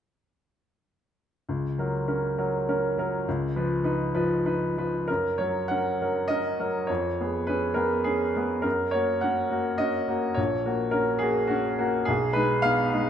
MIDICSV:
0, 0, Header, 1, 2, 480
1, 0, Start_track
1, 0, Key_signature, 6, "major"
1, 0, Tempo, 610376
1, 1165, Time_signature, 3, 2, 24, 8
1, 1644, Tempo, 583090
1, 3084, Tempo, 621118
1, 4044, Tempo, 600000
1, 5964, Tempo, 580833
1, 7884, Tempo, 568182
1, 10666, End_track
2, 0, Start_track
2, 0, Title_t, "Grand piano"
2, 0, Program_c, 0, 0
2, 1169, Note_on_c, 0, 37, 35
2, 1293, Control_c, 0, 64, 127
2, 1402, Note_on_c, 0, 54, 30
2, 1408, Note_on_c, 0, 70, 32
2, 1619, Note_off_c, 0, 54, 0
2, 1622, Note_off_c, 0, 70, 0
2, 1634, Note_on_c, 0, 61, 28
2, 1635, Note_on_c, 0, 70, 34
2, 1860, Note_off_c, 0, 61, 0
2, 1861, Note_off_c, 0, 70, 0
2, 1881, Note_on_c, 0, 54, 33
2, 1886, Note_on_c, 0, 70, 32
2, 2104, Note_off_c, 0, 54, 0
2, 2106, Note_off_c, 0, 70, 0
2, 2135, Note_on_c, 0, 61, 37
2, 2136, Note_on_c, 0, 70, 38
2, 2349, Note_off_c, 0, 61, 0
2, 2350, Note_off_c, 0, 70, 0
2, 2374, Note_on_c, 0, 54, 36
2, 2384, Note_on_c, 0, 70, 41
2, 2577, Note_off_c, 0, 37, 0
2, 2586, Note_off_c, 0, 54, 0
2, 2591, Note_off_c, 0, 70, 0
2, 2620, Control_c, 0, 64, 0
2, 2626, Note_on_c, 0, 37, 45
2, 2768, Control_c, 0, 64, 127
2, 2854, Note_on_c, 0, 71, 40
2, 2855, Note_on_c, 0, 53, 39
2, 3065, Note_off_c, 0, 71, 0
2, 3066, Note_off_c, 0, 53, 0
2, 3083, Note_on_c, 0, 63, 39
2, 3087, Note_on_c, 0, 71, 41
2, 3290, Note_off_c, 0, 63, 0
2, 3292, Note_off_c, 0, 71, 0
2, 3320, Note_on_c, 0, 71, 45
2, 3321, Note_on_c, 0, 53, 42
2, 3531, Note_off_c, 0, 53, 0
2, 3531, Note_off_c, 0, 71, 0
2, 3559, Note_on_c, 0, 63, 36
2, 3563, Note_on_c, 0, 71, 41
2, 3779, Note_off_c, 0, 63, 0
2, 3781, Note_off_c, 0, 71, 0
2, 3807, Note_on_c, 0, 53, 33
2, 3813, Note_on_c, 0, 71, 43
2, 4021, Note_off_c, 0, 37, 0
2, 4024, Note_off_c, 0, 53, 0
2, 4027, Note_off_c, 0, 71, 0
2, 4039, Note_on_c, 0, 70, 51
2, 4059, Control_c, 0, 64, 0
2, 4061, Note_on_c, 0, 42, 37
2, 4170, Control_c, 0, 64, 127
2, 4282, Note_on_c, 0, 73, 56
2, 4284, Note_off_c, 0, 70, 0
2, 4300, Note_on_c, 0, 54, 32
2, 4303, Note_on_c, 0, 70, 29
2, 4510, Note_off_c, 0, 54, 0
2, 4512, Note_off_c, 0, 70, 0
2, 4523, Note_on_c, 0, 78, 55
2, 4525, Note_off_c, 0, 73, 0
2, 4544, Note_on_c, 0, 70, 28
2, 4545, Note_on_c, 0, 61, 28
2, 4752, Note_off_c, 0, 61, 0
2, 4752, Note_off_c, 0, 70, 0
2, 4791, Note_on_c, 0, 54, 27
2, 4792, Note_on_c, 0, 70, 34
2, 4995, Note_off_c, 0, 54, 0
2, 4996, Note_off_c, 0, 70, 0
2, 4999, Note_on_c, 0, 75, 65
2, 5004, Note_off_c, 0, 78, 0
2, 5016, Note_on_c, 0, 61, 31
2, 5018, Note_on_c, 0, 70, 34
2, 5227, Note_off_c, 0, 61, 0
2, 5228, Note_off_c, 0, 70, 0
2, 5254, Note_on_c, 0, 54, 32
2, 5257, Note_on_c, 0, 70, 37
2, 5465, Note_off_c, 0, 42, 0
2, 5469, Note_off_c, 0, 54, 0
2, 5471, Note_off_c, 0, 70, 0
2, 5473, Note_on_c, 0, 73, 48
2, 5485, Note_off_c, 0, 75, 0
2, 5492, Note_on_c, 0, 41, 40
2, 5504, Control_c, 0, 64, 0
2, 5637, Control_c, 0, 64, 127
2, 5743, Note_on_c, 0, 59, 28
2, 5747, Note_on_c, 0, 68, 32
2, 5949, Note_off_c, 0, 59, 0
2, 5951, Note_off_c, 0, 68, 0
2, 5953, Note_on_c, 0, 71, 54
2, 5957, Note_off_c, 0, 73, 0
2, 5970, Note_on_c, 0, 61, 28
2, 5973, Note_on_c, 0, 68, 27
2, 6178, Note_on_c, 0, 70, 53
2, 6183, Note_off_c, 0, 61, 0
2, 6184, Note_off_c, 0, 68, 0
2, 6196, Note_on_c, 0, 59, 33
2, 6198, Note_off_c, 0, 71, 0
2, 6201, Note_on_c, 0, 68, 32
2, 6414, Note_off_c, 0, 68, 0
2, 6416, Note_off_c, 0, 59, 0
2, 6427, Note_on_c, 0, 68, 55
2, 6432, Note_off_c, 0, 70, 0
2, 6442, Note_on_c, 0, 61, 30
2, 6662, Note_off_c, 0, 61, 0
2, 6685, Note_off_c, 0, 68, 0
2, 6694, Note_on_c, 0, 59, 36
2, 6698, Note_on_c, 0, 68, 38
2, 6898, Note_off_c, 0, 41, 0
2, 6903, Note_on_c, 0, 70, 52
2, 6908, Note_off_c, 0, 59, 0
2, 6911, Note_off_c, 0, 68, 0
2, 6919, Note_on_c, 0, 42, 41
2, 6941, Control_c, 0, 64, 0
2, 7087, Control_c, 0, 64, 127
2, 7145, Note_on_c, 0, 73, 60
2, 7155, Note_off_c, 0, 70, 0
2, 7164, Note_on_c, 0, 58, 31
2, 7167, Note_on_c, 0, 66, 31
2, 7380, Note_off_c, 0, 58, 0
2, 7382, Note_off_c, 0, 66, 0
2, 7393, Note_on_c, 0, 78, 56
2, 7395, Note_off_c, 0, 73, 0
2, 7411, Note_on_c, 0, 66, 29
2, 7412, Note_on_c, 0, 61, 31
2, 7624, Note_off_c, 0, 61, 0
2, 7624, Note_off_c, 0, 66, 0
2, 7632, Note_on_c, 0, 58, 33
2, 7637, Note_on_c, 0, 66, 35
2, 7853, Note_off_c, 0, 58, 0
2, 7856, Note_off_c, 0, 66, 0
2, 7861, Note_on_c, 0, 75, 64
2, 7875, Note_on_c, 0, 61, 33
2, 7878, Note_off_c, 0, 78, 0
2, 7880, Note_on_c, 0, 66, 39
2, 8097, Note_off_c, 0, 61, 0
2, 8099, Note_off_c, 0, 66, 0
2, 8117, Note_on_c, 0, 58, 34
2, 8117, Note_on_c, 0, 66, 41
2, 8326, Note_off_c, 0, 42, 0
2, 8337, Note_off_c, 0, 58, 0
2, 8337, Note_off_c, 0, 66, 0
2, 8339, Note_on_c, 0, 73, 54
2, 8353, Note_off_c, 0, 75, 0
2, 8361, Note_on_c, 0, 34, 40
2, 8380, Control_c, 0, 64, 0
2, 8497, Control_c, 0, 64, 127
2, 8600, Note_on_c, 0, 58, 34
2, 8604, Note_on_c, 0, 66, 40
2, 8814, Note_off_c, 0, 58, 0
2, 8816, Note_off_c, 0, 66, 0
2, 8819, Note_on_c, 0, 70, 57
2, 8826, Note_off_c, 0, 73, 0
2, 8836, Note_on_c, 0, 61, 34
2, 8837, Note_on_c, 0, 66, 36
2, 9050, Note_on_c, 0, 68, 63
2, 9052, Note_off_c, 0, 61, 0
2, 9053, Note_off_c, 0, 66, 0
2, 9067, Note_off_c, 0, 70, 0
2, 9071, Note_on_c, 0, 58, 35
2, 9077, Note_on_c, 0, 66, 43
2, 9280, Note_off_c, 0, 66, 0
2, 9291, Note_off_c, 0, 58, 0
2, 9293, Note_on_c, 0, 66, 59
2, 9305, Note_off_c, 0, 68, 0
2, 9316, Note_on_c, 0, 61, 38
2, 9536, Note_off_c, 0, 61, 0
2, 9547, Note_off_c, 0, 66, 0
2, 9553, Note_on_c, 0, 58, 37
2, 9560, Note_on_c, 0, 66, 44
2, 9769, Note_off_c, 0, 34, 0
2, 9777, Note_off_c, 0, 58, 0
2, 9780, Note_off_c, 0, 66, 0
2, 9783, Note_on_c, 0, 68, 64
2, 9803, Note_on_c, 0, 35, 48
2, 9819, Control_c, 0, 64, 0
2, 9969, Control_c, 0, 64, 127
2, 10017, Note_on_c, 0, 71, 68
2, 10035, Note_off_c, 0, 68, 0
2, 10038, Note_on_c, 0, 56, 40
2, 10043, Note_on_c, 0, 63, 37
2, 10256, Note_off_c, 0, 56, 0
2, 10258, Note_off_c, 0, 63, 0
2, 10263, Note_on_c, 0, 77, 76
2, 10269, Note_off_c, 0, 71, 0
2, 10280, Note_on_c, 0, 59, 38
2, 10286, Note_on_c, 0, 63, 41
2, 10497, Note_off_c, 0, 59, 0
2, 10500, Note_off_c, 0, 63, 0
2, 10520, Note_on_c, 0, 56, 42
2, 10527, Note_on_c, 0, 63, 43
2, 10666, Note_off_c, 0, 35, 0
2, 10666, Note_off_c, 0, 56, 0
2, 10666, Note_off_c, 0, 63, 0
2, 10666, Note_off_c, 0, 77, 0
2, 10666, End_track
0, 0, End_of_file